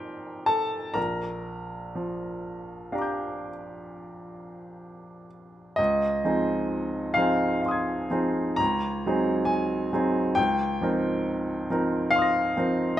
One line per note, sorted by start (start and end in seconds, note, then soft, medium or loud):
0.00 0.93 F2 soft
0.00 0.93 D#4 soft
0.00 0.99 G4 soft
0.00 0.94 A#4 soft
0.00 0.99 C5 medium
0.00 0.47 G5 medium
0.00 0.94 A#5 medium
0.00 0.99 C6 medium
0.46 0.92 A4 soft
0.46 0.95 A5 medium
0.94 5.74 A#1 soft
0.94 5.27 A#4 soft
0.94 2.94 A#5 medium
1.95 3.50 F3 soft
2.92 5.75 D4 soft
2.92 5.75 G4 soft
2.92 5.75 F5 soft
2.92 5.76 A#5 soft
2.99 5.78 D6 soft
2.99 5.79 G6 soft
5.76 6.23 C#2 soft
5.76 7.14 D#5 medium
6.24 7.12 F3 soft
6.24 7.12 C4 soft
6.24 7.12 D#4 soft
6.24 7.12 G#4 soft
7.14 8.07 F3 soft
7.14 8.07 C4 soft
7.14 8.07 D#4 soft
7.14 8.07 G#4 soft
7.14 7.61 F5 medium
7.62 8.55 F5 soft
7.62 8.57 C6 soft
7.68 8.58 D#6 soft
7.68 8.60 G#6 soft
8.11 8.55 F3 soft
8.11 8.55 C4 soft
8.11 8.55 D#4 soft
8.11 8.56 G#4 soft
8.56 9.04 C#2 soft
8.56 9.48 A#5 medium
9.06 9.90 F#3 soft
9.06 9.90 C4 soft
9.06 9.90 D#4 soft
9.06 9.90 G#4 soft
9.45 10.35 G#5 medium
9.93 10.33 F#3 soft
9.93 10.33 C4 soft
9.93 10.33 D#4 soft
9.93 10.33 G#4 soft
10.35 10.80 C#2 soft
10.35 12.13 G5 medium
10.81 11.67 F3 soft
10.81 11.67 C4 soft
10.81 11.67 D#4 soft
10.81 11.68 A#4 soft
11.70 12.53 F3 soft
11.70 12.54 C4 soft
11.70 12.54 D#4 soft
11.70 12.54 A#4 soft
12.11 12.98 F5 medium
12.16 13.00 C6 soft
12.16 13.00 D#6 soft
12.22 13.00 A#6 soft
12.57 13.00 F3 soft
12.57 13.00 C4 soft
12.57 13.00 D#4 soft
12.57 13.00 A#4 soft